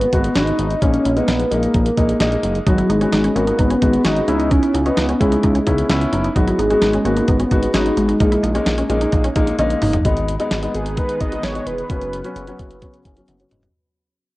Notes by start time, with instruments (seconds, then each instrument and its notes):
Already playing: analog synth lead B3
0.01 closed hi-hat
0.13 analog synth bass G#1, grand piano G#3 B3 F#4, kick, closed hi-hat
0.24 closed hi-hat
0.35 analog synth bass G#1, grand piano G#3 B3 F#4, analog synth lead D#4, snare, closed hi-hat
0.47 closed hi-hat
0.59 analog synth bass G#1, closed hi-hat
0.70 closed hi-hat
0.82 analog synth bass A#1, grand piano G#3 A#3 D#4, analog synth lead C#4, kick, closed hi-hat
0.94 closed hi-hat
1.05 analog synth bass A#1, closed hi-hat
1.17 grand piano G#3 A#3 D#4, analog synth lead B3, closed hi-hat
1.28 analog synth bass A#1, snare, closed hi-hat
1.39 closed hi-hat
1.51 analog synth bass A#1, grand piano G#3 A#3 D#4, analog synth lead A#3, closed hi-hat
1.63 closed hi-hat
1.74 analog synth bass A#1, kick, closed hi-hat
1.86 closed hi-hat
1.97 analog synth bass A#1, grand piano G#3 A#3 D#4, kick, closed hi-hat
2.09 closed hi-hat
2.20 analog synth bass A#1, grand piano G#3 A#3 D#4, snare, closed hi-hat
2.32 closed hi-hat
2.43 analog synth bass F#1, closed hi-hat
2.55 closed hi-hat
2.66 analog synth bass G#1, analog synth lead F#3, grand piano G#3 B3 F#4, synth arpeggio sound D#4, kick, closed hi-hat
2.78 synth arpeggio sound E4, closed hi-hat
2.89 analog synth bass G#1, analog synth lead G#3, synth arpeggio sound D#4, closed hi-hat
3.01 grand piano G#3 B3 F#4, synth arpeggio sound C#4, closed hi-hat
3.12 analog synth bass G#1, synth arpeggio sound D#4, snare, closed hi-hat
3.24 synth arpeggio sound C#4, closed hi-hat
3.36 analog synth bass G#1, grand piano G#3 B3 F#4, analog synth lead A#3, synth arpeggio sound C#4, closed hi-hat
3.47 synth arpeggio sound D#4, closed hi-hat
3.59 analog synth bass G#1, analog synth lead B3, synth arpeggio sound D#4, kick, closed hi-hat
3.70 synth arpeggio sound C#4, closed hi-hat
3.82 analog synth bass G#1, grand piano G#3 B3 F#4, synth arpeggio sound D#4, kick, closed hi-hat
3.93 closed hi-hat
4.05 analog synth bass G#1, grand piano G#3 B3 F#4, synth arpeggio sound C#4, analog synth lead D#4, snare, closed hi-hat
4.17 closed hi-hat
4.28 analog synth bass C#2, grand piano B3 C#4 E4, analog synth lead D#4, synth arpeggio sound D#4, closed hi-hat
4.40 synth arpeggio sound D#4, closed hi-hat
4.51 analog synth lead C#4, synth arpeggio sound D#4, kick, closed hi-hat
4.63 synth arpeggio sound E4, closed hi-hat
4.74 analog synth bass C#2, synth arpeggio sound D#4, closed hi-hat
4.86 analog synth lead B3, grand piano B3 C#4 D#4, synth arpeggio sound C#4, closed hi-hat
4.97 analog synth bass C#2, synth arpeggio sound D#4, snare, closed hi-hat
5.09 synth arpeggio sound C#4, closed hi-hat
5.20 analog synth bass C#2, analog synth lead G#3, grand piano B3 C#4 E4, synth arpeggio sound C#4, kick, closed hi-hat
5.32 synth arpeggio sound D#4, closed hi-hat
5.43 analog synth bass C#2, synth arpeggio sound D#4, kick, closed hi-hat
5.55 synth arpeggio sound C#4, closed hi-hat
5.67 analog synth bass C#2, grand piano B3 C#4 E4, synth arpeggio sound D#4, kick, closed hi-hat
5.78 closed hi-hat
5.90 analog synth bass C#2, grand piano B3 C#4 E4, synth arpeggio sound C#4, snare, closed hi-hat
6.01 closed hi-hat
6.13 analog synth bass F#1, synth arpeggio sound D#4, closed hi-hat
6.24 synth arpeggio sound D#4, closed hi-hat
6.36 analog synth bass G#1, analog synth lead F#3, grand piano G#3 B3 F#4, synth arpeggio sound D#4, kick, closed hi-hat
6.48 synth arpeggio sound E4, closed hi-hat
6.59 analog synth bass G#1, analog synth lead G#3, synth arpeggio sound D#4, closed hi-hat
6.70 grand piano G#3 B3 F#4, synth arpeggio sound C#4, closed hi-hat
6.82 analog synth bass G#1, synth arpeggio sound D#4, snare, closed hi-hat
6.93 synth arpeggio sound C#4, closed hi-hat
7.05 analog synth bass G#1, grand piano G#3 B3 F#4, analog synth lead A#3, synth arpeggio sound C#4, closed hi-hat
7.17 synth arpeggio sound D#4, closed hi-hat
7.28 analog synth bass G#1, analog synth lead B3, synth arpeggio sound D#4, kick, closed hi-hat
7.40 synth arpeggio sound C#4, closed hi-hat
7.51 analog synth bass G#1, grand piano G#3 B3 F#4, synth arpeggio sound D#4, kick, closed hi-hat
7.63 closed hi-hat
7.74 analog synth bass G#1, grand piano G#3 B3 F#4, synth arpeggio sound C#4, analog synth lead D#4, snare, closed hi-hat
7.86 closed hi-hat
7.97 analog synth bass G#1, analog synth lead G#3, synth arpeggio sound D#4, closed hi-hat
8.09 synth arpeggio sound D#4, closed hi-hat
8.20 analog synth bass A#1, grand piano G#3 A#3 D#4, synth arpeggio sound D#4, kick, closed hi-hat
8.32 synth arpeggio sound E4, closed hi-hat
8.43 analog synth bass A#1, synth arpeggio sound D#4, closed hi-hat
8.55 grand piano G#3 A#3 D#4, synth arpeggio sound C#4, closed hi-hat
8.66 analog synth bass A#1, synth arpeggio sound D#4, snare, closed hi-hat
8.78 synth arpeggio sound C#4, closed hi-hat
8.90 analog synth bass A#1, grand piano G#3 A#3 D#4, synth arpeggio sound C#4, closed hi-hat
9.01 synth arpeggio sound D#4, closed hi-hat
9.12 analog synth bass A#1, synth arpeggio sound D#4, kick, closed hi-hat
9.24 synth arpeggio sound C#4, closed hi-hat
9.36 analog synth bass A#1, grand piano G#3 A#3 D#4, synth arpeggio sound D#4, kick, closed hi-hat
9.47 closed hi-hat
9.59 analog synth bass A#1, grand piano G#3 A#3 D#4, synth arpeggio sound C#4, closed hi-hat, high tom
9.70 closed hi-hat
9.82 analog synth bass F#1, synth arpeggio sound D#4, mid tom, open hi-hat
9.93 synth arpeggio sound D#4, closed hi-hat, floor tom
10.05 analog synth bass G#1, analog synth pad D#3 G#3 B3, grand piano G#3 B3 D#4, kick, closed hi-hat
10.17 closed hi-hat
10.28 closed hi-hat
10.40 grand piano G#3 B3 D#4, closed hi-hat
10.51 analog synth bass G#1, snare, closed hi-hat
10.63 grand piano G#3 B3 D#4, closed hi-hat
10.74 analog synth bass G#1, analog synth lead G#4, closed hi-hat
10.86 closed hi-hat
10.97 grand piano G#3 B3 D#4, analog synth lead B4, kick, closed hi-hat
11.09 closed hi-hat
11.20 analog synth bass G#1, analog synth lead D#5, kick, closed hi-hat
11.32 grand piano G#3 B3 D#4, closed hi-hat
11.43 analog synth bass G#1, analog synth lead C#5, snare, closed hi-hat
11.55 grand piano G#3 B3 D#4, closed hi-hat
11.67 analog synth bass E1, analog synth lead B4, closed hi-hat
11.78 closed hi-hat
11.90 analog synth bass F#1, analog synth pad C#3 F#3 B3, grand piano F#3 B3 C#4, kick, closed hi-hat
12.01 closed hi-hat
12.13 closed hi-hat
12.24 grand piano F#3 B3 C#4, closed hi-hat
12.36 analog synth bass F#1, closed hi-hat
12.47 grand piano F#3 B3 C#4, closed hi-hat
12.59 analog synth bass F#1, kick, closed hi-hat
12.71 closed hi-hat
12.82 grand piano F#3 B3 C#4, kick, closed hi-hat
12.94 closed hi-hat
13.05 analog synth bass F#1, grand piano G#5, kick, closed hi-hat
13.17 grand piano F#3 B3 C#4, closed hi-hat
13.28 analog synth bass F#1, grand piano F#5, closed hi-hat, high tom
13.40 grand piano F#3 B3 C#4, closed hi-hat
13.51 analog synth bass E1, grand piano D#5, closed hi-hat, mid tom
13.63 closed hi-hat, floor tom